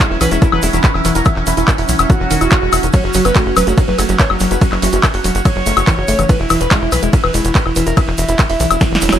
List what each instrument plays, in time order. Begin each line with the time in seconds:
Already playing: synth texture F#3 C#4
0.10 analog synth bass E1, analog synth lead E4, synth arpeggio sound E4
0.21 analog synth bass B1, synth arpeggio sound E3, analog synth lead B4, open hi-hat, high woodblock, shaker
0.31 analog synth bass E1, synth arpeggio sound G#3, analog synth lead E4, closed hi-hat, shaker
0.42 synth arpeggio sound E4, analog synth lead E4, kick, closed hi-hat, shaker
0.52 analog synth bass E1, synth arpeggio sound E3, analog synth lead B4, high woodblock
0.62 analog synth bass E1, synth arpeggio sound G#3, analog synth lead E4, open hi-hat, shaker
0.73 analog synth bass E1, synth arpeggio sound E3, analog synth lead E4, closed hi-hat, shaker
0.84 analog synth lead B4, kick, clap, closed hi-hat, shaker
0.94 analog synth bass E1, synth arpeggio sound E3, analog synth lead E4, high woodblock
1.05 analog synth bass E1, synth arpeggio sound E3, analog synth lead E4, open hi-hat, shaker
1.15 analog synth bass E1, synth arpeggio sound E4, analog synth lead A#4, closed hi-hat, shaker
1.25 synth arpeggio sound E3, analog synth lead E4, kick, closed hi-hat, high woodblock, shaker
1.36 analog synth bass E1, synth arpeggio sound E3, clap
1.47 analog synth bass E1, synth arpeggio sound E3, analog synth lead E4, open hi-hat, shaker
1.57 analog synth bass E1, synth arpeggio sound E4, analog synth lead E4, closed hi-hat, shaker
1.68 kick, clap, closed hi-hat, high woodblock, shaker
1.78 analog synth bass E1, synth arpeggio sound E4, analog synth lead E4, open hi-hat
1.89 analog synth bass B1, synth arpeggio sound E3, analog synth lead E4, open hi-hat, shaker
1.99 analog synth bass E1, analog synth lead E4, closed hi-hat, high woodblock, shaker
2.10 synth arpeggio sound E3, analog synth lead F#4, kick, closed hi-hat, shaker
2.20 analog synth bass E1, synth arpeggio sound E3
2.31 analog synth bass E1, synth arpeggio sound D#3, open hi-hat, shaker
2.41 analog synth bass E1, synth arpeggio sound E4, closed hi-hat, high woodblock, shaker
2.51 synth arpeggio sound F#4, kick, clap, closed hi-hat, shaker
2.62 analog synth bass E1, synth arpeggio sound G#3
2.73 analog synth bass E1, synth arpeggio sound E4, open hi-hat, high woodblock, shaker
2.83 analog synth bass E1, synth arpeggio sound D#3, closed hi-hat, shaker
2.93 synth arpeggio sound F#3, analog synth lead C#5, kick, closed hi-hat, ride, shaker
3.04 analog synth bass F#1, analog synth lead F#4
3.14 analog synth bass F#1, synth arpeggio sound F#3, analog synth lead F#4, open hi-hat, shaker
3.25 analog synth bass F#1, wobble bass B3, analog synth lead B4, closed hi-hat, high woodblock, shaker
3.35 synth arpeggio sound A3, wobble bass B3, analog synth lead F#4, kick, clap, closed hi-hat, ride, shaker
3.46 analog synth bass F#1, analog synth lead F#4, synth arpeggio sound F#4
3.57 analog synth bass E1, synth arpeggio sound F#3, analog synth lead B4, open hi-hat, high woodblock, shaker
3.67 analog synth bass F#1, wobble bass F#3, synth arpeggio sound A3, analog synth lead F#4, closed hi-hat, shaker
3.77 wobble bass F#3, analog synth lead F#4, synth arpeggio sound F#4, kick, closed hi-hat, ride, shaker
3.88 analog synth bass F#1, synth arpeggio sound F#3, analog synth lead B4
3.98 analog synth bass F#1, synth arpeggio sound A3, analog synth lead F#4, open hi-hat, high woodblock, shaker
4.09 analog synth bass F#1, synth arpeggio sound F#3, analog synth lead F#4, closed hi-hat, shaker
4.19 analog synth lead C#5, kick, clap, closed hi-hat, ride, shaker
4.30 analog synth bass F#1, wobble bass F#3, synth arpeggio sound F#3, analog synth lead F#4, high woodblock
4.40 analog synth bass F#1, synth arpeggio sound F#3, analog synth lead F#4, open hi-hat, shaker
4.51 analog synth bass F#1, synth arpeggio sound F#4, analog synth lead B4, closed hi-hat, shaker
4.61 synth arpeggio sound F#3, analog synth lead F#4, kick, closed hi-hat, ride, shaker
4.72 analog synth bass F#1, synth arpeggio sound F#3, clap, high woodblock
4.82 analog synth bass F#1, wobble bass E3, synth arpeggio sound F#3, analog synth lead F#4, open hi-hat, shaker
4.92 analog synth bass F#1, wobble bass E3, analog synth lead F#4, synth arpeggio sound F#4, closed hi-hat, shaker
5.03 kick, clap, closed hi-hat, ride, high woodblock, shaker
5.14 analog synth bass F#1, analog synth lead F#4, synth arpeggio sound F#4, open hi-hat
5.24 analog synth bass E1, synth arpeggio sound F#3, analog synth lead F#4, open hi-hat, shaker
5.35 analog synth bass F#1, analog synth lead F#4, closed hi-hat, shaker
5.45 synth arpeggio sound F#3, analog synth lead C#5, kick, closed hi-hat, ride, high woodblock, shaker
5.56 analog synth bass F#1, synth arpeggio sound F#3
5.66 analog synth bass F#1, synth arpeggio sound A3, open hi-hat, shaker
5.77 analog synth bass F#1, synth arpeggio sound F#4, closed hi-hat, high woodblock, shaker
5.87 synth arpeggio sound E3, kick, clap, closed hi-hat, ride, shaker
5.98 analog synth bass F#1, synth arpeggio sound F#4
6.08 analog synth bass F#1, synth arpeggio sound A3, open hi-hat, shaker
6.19 analog synth bass F#1, synth arpeggio sound E3, closed hi-hat, high woodblock, shaker
6.29 synth arpeggio sound E3, analog synth lead B4, kick, closed hi-hat, ride, shaker
6.40 analog synth bass E1, analog synth lead E4
6.50 analog synth bass E1, synth arpeggio sound E3, analog synth lead E4, open hi-hat, high woodblock, shaker
6.60 analog synth bass E1, analog synth lead B4, closed hi-hat, shaker
6.71 synth arpeggio sound G#3, analog synth lead E4, kick, clap, closed hi-hat, ride, shaker
6.82 analog synth bass E1, synth arpeggio sound E4, analog synth lead E4
6.92 analog synth bass B1, synth arpeggio sound E3, analog synth lead B4, open hi-hat, high woodblock, shaker
7.03 analog synth bass E1, synth arpeggio sound G#3, analog synth lead E4, closed hi-hat, shaker
7.13 analog synth lead E4, synth arpeggio sound E4, kick, closed hi-hat, ride, shaker
7.24 analog synth bass E1, synth arpeggio sound E3, analog synth lead B4, high woodblock
7.34 analog synth bass E1, synth arpeggio sound G#3, analog synth lead E4, open hi-hat, shaker
7.45 analog synth bass E1, synth arpeggio sound E3, analog synth lead E4, closed hi-hat, shaker
7.55 analog synth lead B4, kick, clap, closed hi-hat, ride, shaker
7.66 analog synth bass E1, synth arpeggio sound E3, analog synth lead E4, high woodblock
7.76 analog synth bass E1, synth arpeggio sound E3, analog synth lead E4, open hi-hat, shaker
7.87 analog synth bass E1, synth arpeggio sound E4, analog synth lead A#4, closed hi-hat, shaker
7.97 synth arpeggio sound E3, analog synth lead E4, kick, closed hi-hat, ride, high woodblock, shaker
8.08 analog synth bass E1, synth arpeggio sound E3, clap
8.18 analog synth bass E1, synth arpeggio sound E3, analog synth lead E4, open hi-hat, shaker
8.28 analog synth bass E1, analog synth lead E4, synth arpeggio sound E4, closed hi-hat, shaker
8.39 kick, clap, closed hi-hat, ride, high woodblock, shaker
8.50 analog synth bass E1, analog synth lead E4, synth arpeggio sound E4, open hi-hat
8.60 analog synth bass B1, synth arpeggio sound E3, analog synth lead E4, open hi-hat, shaker
8.71 analog synth bass E1, analog synth lead E4, closed hi-hat, high woodblock, shaker
8.81 synth arpeggio sound E3, analog synth lead E4, kick, snare, closed hi-hat, ride, shaker
8.92 analog synth bass E1, synth arpeggio sound E3, snare
9.01 analog synth bass E1, synth arpeggio sound F#3, open hi-hat, shaker
9.09 analog synth bass E1, synth arpeggio sound F#3, snare, closed hi-hat, high woodblock, shaker